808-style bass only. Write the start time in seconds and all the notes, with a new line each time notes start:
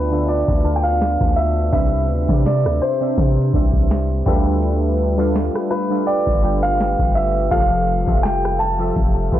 Already playing: D2
0.48 D2
1.21 D2
1.73 C2
2.10 D2
2.29 C3
2.65 D2
3.18 C3
3.54 C2
4.26 D2
6.27 G1
6.99 G1
7.52 F1
8.08 F1
8.96 F1
9.33 F1